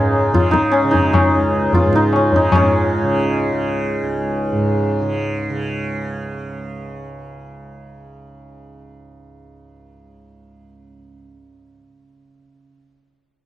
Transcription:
0.00 1.35 C#2 medium
0.00 1.83 G#2 medium
0.00 0.34 C#3 medium
0.00 0.71 C#4 medium
0.00 0.51 D#4 loud
0.00 0.34 F4 loud
0.00 1.30 G#4 medium
0.00 0.91 A#4 medium
0.34 0.84 C#3 medium
0.34 1.74 F4 loud
0.34 tabla tin medium
0.34 tabla ge medium
0.51 0.91 D#4 loud
0.51 tabla ke medium
0.72 1.13 C#4 loud
0.72 tabla na medium
0.84 2.34 C#3 medium
0.91 1.95 D#4 loud
0.91 tabla tin medium
0.91 tabla ge medium
1.13 2.15 C#4 medium
1.13 tabla na loud
1.13 tabla ge medium
1.35 4.02 C#2 medium
1.73 5.12 F4 loud
1.73 tabla tin medium
1.73 tabla ge medium
1.84 2.54 G#2 medium
1.93 2.35 D#4 loud
1.93 tabla ke medium
2.13 2.55 C#4 medium
2.13 tabla na medium
2.33 3.03 C#3 medium
2.33 5.96 D#4 loud
2.33 tabla tin medium
2.33 tabla ge medium
2.52 4.52 G#2 medium
2.52 6.42 C#4 loud
2.52 tabla na loud
2.52 tabla ge loud
3.03 3.52 C#3 medium
3.52 5.02 C#3 medium
4.02 11.17 C#2 medium
4.52 11.67 G#2 medium
5.02 5.50 C#3 medium
5.50 12.65 C#3 medium

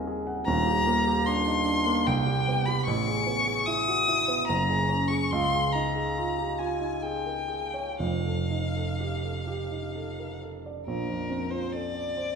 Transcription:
0.00 0.42 D#1 medium
0.00 0.42 D#2 medium
0.00 0.49 C4 medium
0.00 0.48 D#4 medium
0.00 0.48 F4 medium
0.00 0.07 G#4 medium
0.00 0.49 A#4 medium
0.07 0.39 G#4 medium
0.27 0.46 F#5 medium
0.45 2.02 D#1 medium
0.45 2.02 D#2 medium
0.45 1.27 A#5 loud
0.67 0.99 G4 medium
0.87 1.19 A#3 medium
1.07 1.39 G4 medium
1.26 1.59 D4 medium
1.26 2.08 C6 loud
1.47 1.67 D#4 medium
1.65 1.97 D4 medium
1.86 2.06 A#3 medium
2.06 2.84 C2 medium
2.06 2.67 G5 loud
2.27 2.58 G4 medium
2.48 2.79 B3 medium
2.66 2.87 G4 medium
2.66 2.85 B5 medium
2.86 4.45 A1 medium
2.86 3.68 C#6 loud
3.08 3.39 G#4 medium
3.27 3.59 B3 medium
3.47 3.79 G#4 medium
3.66 4.00 E4 medium
3.66 4.47 D#6 loud
3.88 4.08 F#4 soft
4.08 4.41 E4 medium
4.28 4.49 B3 medium
4.48 5.29 F#1 medium
4.48 5.10 A#5 loud
4.69 5.02 G#4 medium
4.88 5.23 C#4 medium
5.08 5.31 G#4 medium
5.08 5.32 C#6 medium
5.30 7.97 C#2 medium
5.30 5.74 C6 loud
5.54 5.87 G#4 medium
5.72 6.08 D#4 medium
5.72 6.60 A#5 medium
5.96 6.29 G#4 soft
6.18 6.51 F4 medium
6.39 6.59 G4 soft
6.59 6.94 F4 soft
6.59 7.04 G#5 medium
6.81 7.17 D#4 soft
7.02 7.41 G#4 soft
7.02 8.00 G5 medium
7.26 7.50 A#4 soft
7.48 7.89 G#4 soft
7.74 8.00 C#5 soft
7.99 10.82 F1 medium
7.99 10.82 F2 soft
7.99 10.38 F5 medium
8.26 8.66 A4 soft
8.50 8.90 D#4 soft
8.76 9.15 A4 soft
9.00 9.38 G4 soft
9.23 9.47 A4 soft
9.47 9.85 G4 soft
9.72 10.09 D#4 soft
9.96 10.33 A4 soft
10.19 10.42 A#4 soft
10.42 10.78 A4 soft
10.66 10.87 D5 soft
10.87 12.35 A#1 medium
10.87 11.52 A#4 medium
11.09 11.43 F2 soft
11.30 11.64 C4 soft
11.51 11.85 F4 soft
11.51 11.74 C5 medium
11.72 12.07 A4 soft
11.72 12.35 D5 medium
11.95 12.28 D5 soft
12.17 12.35 C5 soft

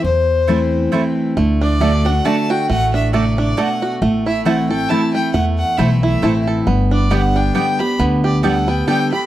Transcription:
0.04 0.86 E2 medium
0.04 0.89 E2 medium
0.04 0.88 C5 loud
0.47 0.91 E3 medium
0.47 0.58 A3 medium
0.47 0.91 A3 medium
0.47 0.91 C4 medium
0.47 0.58 E4 medium
0.47 0.91 E4 medium
0.47 0.58 C5 medium
0.47 0.58 A5 loud
0.92 1.35 E3 medium
0.92 1.02 A3 medium
0.92 1.35 A3 medium
0.92 1.35 C4 loud
0.92 1.02 E4 medium
0.92 1.36 E4 medium
0.92 1.02 C5 medium
0.92 1.03 A5 medium
1.37 2.19 D2 medium
1.37 1.79 D3 medium
1.37 1.81 A3 medium
1.61 2.05 D4 medium
1.61 2.06 D5 loud
1.80 2.04 D3 medium
1.80 1.91 A3 medium
1.80 2.04 A3 medium
1.80 2.25 A3 medium
1.80 2.05 D4 medium
1.80 1.91 F#4 medium
1.80 2.03 F#4 medium
1.80 1.91 D5 medium
1.80 1.91 A5 medium
2.05 2.66 D4 medium
2.05 2.25 D4 medium
2.05 2.24 F#4 medium
2.05 2.27 F#5 medium
2.24 2.67 D3 medium
2.24 2.35 A3 medium
2.24 2.67 A3 medium
2.24 2.69 A3 medium
2.24 2.68 D4 medium
2.24 2.35 F#4 medium
2.24 2.68 F#4 medium
2.24 2.35 D5 medium
2.24 2.52 A5 loud
2.24 2.35 A5 medium
2.50 3.10 F#4 medium
2.50 2.69 G5 loud
2.69 3.52 A1 medium
2.69 3.54 A2 medium
2.69 3.13 A3 medium
2.69 2.92 F#5 loud
2.94 3.37 D4 medium
2.94 3.12 E5 medium
3.13 3.56 C3 medium
3.13 3.23 A3 medium
3.13 3.58 A3 medium
3.13 3.23 F#4 medium
3.13 3.36 D5 medium
3.13 3.24 D5 medium
3.13 3.24 A5 loud
3.38 3.98 D4 medium
3.38 3.60 D5 medium
3.57 4.00 B2 medium
3.57 3.67 A3 medium
3.57 4.02 A3 medium
3.57 3.68 F#4 medium
3.57 3.68 D5 medium
3.57 3.92 F#5 medium
3.57 3.68 A5 medium
3.82 4.02 F#4 medium
4.02 4.84 A1 medium
4.02 4.86 A2 medium
4.02 5.14 A3 medium
4.26 4.45 E4 medium
4.26 4.45 E5 medium
4.45 4.69 E3 medium
4.45 4.56 A3 loud
4.45 4.70 A3 medium
4.45 4.70 C4 medium
4.45 4.56 E4 medium
4.45 4.89 E4 medium
4.45 4.68 E4 medium
4.45 4.56 C5 medium
4.45 4.69 F#5 medium
4.45 4.56 A5 loud
4.70 4.90 C4 medium
4.70 4.89 E4 medium
4.70 5.30 A4 medium
4.70 4.91 G5 loud
4.89 5.13 E3 medium
4.89 5.00 A3 medium
4.89 5.14 A3 medium
4.89 5.14 C4 medium
4.89 5.54 E4 medium
4.89 5.00 E4 medium
4.89 5.13 E4 loud
4.89 5.00 C5 medium
4.89 5.13 A5 loud
4.89 5.00 A5 medium
5.14 5.33 A3 medium
5.14 5.34 C4 medium
5.14 5.33 E4 medium
5.14 5.32 G5 loud
5.33 5.62 E2 medium
5.33 6.19 E2 medium
5.33 5.78 A3 medium
5.33 5.45 F#5 medium
5.58 5.79 F#5 medium
5.77 6.16 B1 medium
5.77 6.20 E3 medium
5.77 5.88 A3 medium
5.77 6.42 A3 medium
5.77 6.21 A3 medium
5.77 6.21 C4 medium
5.77 5.88 E4 medium
5.77 6.22 E4 medium
5.77 5.89 C5 loud
5.77 6.01 E5 medium
5.77 5.89 A5 medium
6.02 6.22 E4 medium
6.02 6.43 E5 medium
6.22 6.60 A1 medium
6.22 6.65 E3 medium
6.22 6.32 A3 medium
6.22 6.65 A3 medium
6.22 6.65 C4 medium
6.22 6.33 E4 medium
6.22 6.67 E4 medium
6.22 6.66 E4 medium
6.22 6.33 C5 loud
6.22 6.33 A5 loud
6.47 6.67 A4 medium
6.67 7.49 G1 medium
6.67 7.51 G2 medium
6.67 7.11 B3 medium
6.91 7.35 D4 medium
6.91 7.13 D5 medium
7.10 7.53 D3 medium
7.10 7.53 G3 medium
7.10 7.21 B3 medium
7.10 7.54 B3 medium
7.10 7.21 G4 medium
7.10 7.54 G4 medium
7.10 7.21 D5 loud
7.10 7.38 F#5 medium
7.10 7.21 G5 loud
7.36 7.96 D4 medium
7.36 7.55 G5 medium
7.54 7.79 D3 medium
7.54 7.79 G3 medium
7.54 7.65 B3 medium
7.54 7.98 B3 medium
7.54 7.79 B3 medium
7.54 7.65 G4 medium
7.54 7.79 G4 loud
7.54 7.65 D5 medium
7.54 7.81 G5 medium
7.54 7.65 G5 loud
7.79 8.00 B3 soft
7.79 7.99 G4 medium
7.79 8.23 G4 medium
7.79 7.99 B5 medium
7.99 8.81 D2 medium
7.99 8.42 D3 medium
7.99 8.63 B3 medium
8.24 8.84 G4 medium
8.24 8.42 D5 medium
8.43 8.67 D3 medium
8.43 8.67 G3 medium
8.43 8.53 B3 medium
8.43 8.68 B3 medium
8.43 8.54 G4 medium
8.43 8.67 G4 medium
8.43 8.86 A4 medium
8.43 8.54 D5 loud
8.43 8.70 F#5 medium
8.43 8.54 G5 medium
8.68 9.26 B3 medium
8.68 8.88 B3 medium
8.68 8.87 G4 medium
8.68 8.87 G5 medium
8.87 9.11 D3 medium
8.87 9.11 G3 medium
8.87 8.98 B3 medium
8.87 9.12 B3 medium
8.87 8.98 G4 medium
8.87 9.11 G4 loud
8.87 9.26 A4 medium
8.87 8.98 D5 medium
8.87 9.10 G5 loud
8.87 8.98 G5 loud
9.12 9.26 B3 medium
9.12 9.26 G4 medium
9.12 9.26 B5 loud

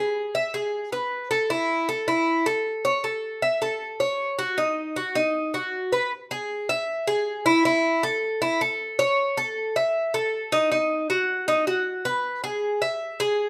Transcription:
0.00 0.34 G#4 medium
0.35 0.54 E5 medium
0.54 0.91 G#4 medium
0.92 1.30 B4 medium
1.31 1.50 A4 medium
1.50 1.88 E4 medium
1.89 2.07 A4 medium
2.08 2.45 E4 medium
2.46 2.84 A4 medium
2.85 3.03 C#5 medium
3.04 3.41 A4 medium
3.42 3.61 E5 medium
3.62 3.99 A4 medium
4.00 4.37 C#5 medium
4.39 4.57 F#4 medium
4.58 4.95 D#4 medium
4.96 5.15 F#4 medium
5.15 5.53 D#4 medium
5.54 5.91 F#4 medium
5.93 6.11 B4 medium
6.31 6.68 G#4 medium
6.69 7.06 E5 medium
7.07 7.45 G#4 medium
7.46 7.64 E4 medium
7.65 8.02 E4 medium
8.03 8.40 A4 medium
8.42 8.60 E4 medium
8.61 8.98 A4 medium
8.99 9.36 C#5 medium
9.37 9.75 A4 medium
9.76 10.13 E5 medium
10.14 10.51 A4 medium
10.52 10.70 D#4 medium
10.72 11.09 D#4 medium
11.10 11.47 F#4 medium
11.48 11.67 D#4 medium
11.67 12.04 F#4 medium
12.05 12.43 B4 medium
12.44 12.81 G#4 medium
12.82 13.19 E5 medium
13.20 13.49 G#4 medium

